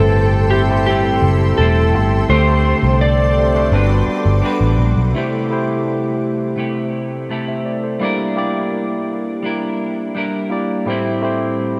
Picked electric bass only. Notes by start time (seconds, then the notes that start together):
0.00 G1
1.22 F#1
1.59 E1
1.94 G1
2.29 D2
2.83 C2
3.72 G1
4.08 muted picked electric bass stroke
4.26 G1
4.61 A1
4.79 A#1
4.97 B1